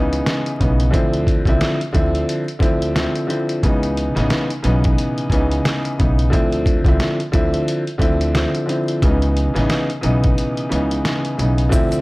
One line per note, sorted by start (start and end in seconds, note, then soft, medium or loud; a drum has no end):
0.00 0.19 C#2 medium
0.00 0.54 C#3 medium
0.00 0.55 E3 medium
0.00 0.55 B3 medium
0.00 0.56 D#4 medium
0.13 closed hi-hat medium
0.26 snare loud
0.26 closed hi-hat medium
0.46 closed hi-hat medium
0.59 0.88 B1 medium
0.59 0.91 C#3 medium
0.59 0.91 E3 medium
0.59 0.92 B3 medium
0.59 0.92 D#4 medium
0.59 kick medium
0.59 closed hi-hat medium
0.80 closed hi-hat medium
0.91 1.38 D2 loud
0.91 1.41 D3 medium
0.91 1.41 F3 medium
0.91 1.42 C4 medium
0.91 1.42 E4 medium
0.91 kick loud
0.91 closed hi-hat loud
1.14 closed hi-hat medium
1.27 kick medium
1.27 closed hi-hat medium
1.45 1.58 C2 medium
1.45 1.77 D3 medium
1.45 1.77 F3 medium
1.45 1.78 C4 medium
1.45 1.78 E4 loud
1.45 kick medium
1.45 closed hi-hat medium
1.61 snare loud
1.61 closed hi-hat medium
1.81 closed hi-hat medium
1.93 2.22 D2 loud
1.93 2.42 D3 medium
1.93 2.43 F3 medium
1.93 2.43 C4 medium
1.93 2.43 E4 loud
1.93 kick medium
1.93 closed hi-hat medium
2.15 closed hi-hat medium
2.29 closed hi-hat loud
2.48 closed hi-hat soft
2.59 3.05 D2 medium
2.59 2.92 D3 medium
2.59 2.92 F3 medium
2.59 2.93 C4 medium
2.59 2.93 E4 loud
2.59 kick medium
2.59 closed hi-hat medium
2.82 closed hi-hat medium
2.94 3.25 D3 medium
2.94 3.26 F3 medium
2.94 3.27 C4 medium
2.94 3.28 E4 medium
2.94 snare loud
2.94 closed hi-hat medium
3.16 closed hi-hat medium
3.27 3.60 D3 medium
3.27 3.60 F3 medium
3.27 3.60 C4 medium
3.27 3.61 E4 medium
3.27 closed hi-hat medium
3.49 closed hi-hat medium
3.63 4.07 C#2 loud
3.63 4.12 C#3 medium
3.63 4.12 E3 medium
3.63 4.13 B3 medium
3.63 4.13 D#4 loud
3.63 kick loud
3.63 closed hi-hat loud
3.83 closed hi-hat medium
3.97 closed hi-hat medium
4.15 4.28 A1 medium
4.15 4.46 C#3 medium
4.15 4.47 E3 medium
4.15 4.47 B3 medium
4.15 4.48 D#4 medium
4.15 snare soft
4.15 closed hi-hat medium
4.30 snare loud
4.30 closed hi-hat medium
4.50 closed hi-hat medium
4.62 4.92 B1 medium
4.62 5.26 C#3 medium
4.62 5.27 E3 medium
4.62 5.27 B3 medium
4.62 5.28 D#4 loud
4.62 closed hi-hat medium
4.84 kick medium
4.84 closed hi-hat medium
4.98 closed hi-hat loud
5.18 closed hi-hat soft
5.30 5.58 C#2 medium
5.30 5.94 C#3 medium
5.30 5.94 E3 medium
5.30 5.95 B3 medium
5.30 5.95 D#4 loud
5.30 kick medium
5.30 closed hi-hat medium
5.51 closed hi-hat medium
5.65 snare loud
5.65 closed hi-hat medium
5.85 closed hi-hat medium
5.98 6.27 B1 medium
5.98 6.30 C#3 medium
5.98 6.30 E3 medium
5.98 6.31 B3 medium
5.98 6.31 D#4 medium
5.98 kick medium
5.98 closed hi-hat medium
6.19 closed hi-hat medium
6.30 6.77 D2 loud
6.30 6.80 D3 medium
6.30 6.80 F3 medium
6.30 6.81 C4 medium
6.30 6.81 E4 loud
6.30 kick loud
6.30 closed hi-hat loud
6.52 closed hi-hat medium
6.66 kick medium
6.66 closed hi-hat medium
6.85 6.97 C2 medium
6.85 7.16 D3 medium
6.85 7.17 F3 medium
6.85 7.17 C4 medium
6.85 7.18 E4 loud
6.85 kick medium
6.85 closed hi-hat medium
7.00 snare loud
7.00 closed hi-hat medium
7.20 closed hi-hat medium
7.32 7.62 D2 loud
7.32 7.81 D3 loud
7.32 7.82 F3 medium
7.32 7.82 C4 medium
7.32 7.83 E4 loud
7.32 kick medium
7.32 closed hi-hat medium
7.54 closed hi-hat medium
7.68 closed hi-hat loud
7.87 closed hi-hat soft
7.98 8.44 D2 medium
7.98 8.31 D3 medium
7.98 8.32 F3 medium
7.98 8.32 C4 medium
7.98 8.33 E4 loud
7.98 kick medium
7.98 closed hi-hat medium
8.21 closed hi-hat medium
8.34 8.64 D3 medium
8.34 8.65 F3 medium
8.34 8.66 C4 medium
8.34 8.67 E4 medium
8.34 snare loud
8.34 closed hi-hat medium
8.55 closed hi-hat medium
8.66 8.99 D3 medium
8.66 8.99 F3 medium
8.66 9.00 C4 medium
8.66 9.00 E4 medium
8.66 closed hi-hat medium
8.88 closed hi-hat medium
9.02 9.46 C#2 loud
9.02 9.51 C#3 medium
9.02 9.51 E3 medium
9.02 9.52 B3 medium
9.02 9.52 D#4 medium
9.02 kick loud
9.02 closed hi-hat loud
9.22 closed hi-hat medium
9.37 closed hi-hat medium
9.54 9.67 A1 medium
9.54 9.85 C#3 medium
9.54 9.86 E3 medium
9.54 9.86 B3 medium
9.54 9.87 D#4 loud
9.54 snare soft
9.54 closed hi-hat medium
9.70 snare loud
9.70 closed hi-hat medium
9.90 closed hi-hat medium
10.01 10.32 B1 medium
10.01 10.65 C#3 medium
10.01 10.66 E3 medium
10.01 10.66 B3 medium
10.01 10.67 D#4 loud
10.01 closed hi-hat medium
10.24 kick loud
10.24 closed hi-hat medium
10.38 closed hi-hat loud
10.57 closed hi-hat soft
10.69 10.99 C#2 medium
10.69 11.33 C#3 medium
10.69 11.33 E3 medium
10.69 11.34 B3 medium
10.69 11.34 D#4 loud
10.69 closed hi-hat medium
10.91 closed hi-hat medium
11.05 snare loud
11.05 closed hi-hat medium
11.25 closed hi-hat medium
11.37 11.66 B1 medium
11.37 11.69 C#3 medium
11.37 11.70 E3 medium
11.37 11.70 B3 medium
11.37 11.70 D#4 medium
11.37 closed hi-hat medium
11.58 closed hi-hat medium
11.69 12.01 D2 medium
11.69 12.01 D3 medium
11.69 12.01 F3 medium
11.69 12.01 C4 medium
11.69 12.01 E4 loud
11.69 kick loud
11.69 closed hi-hat loud
11.69 shaker medium
11.91 closed hi-hat medium
11.91 shaker soft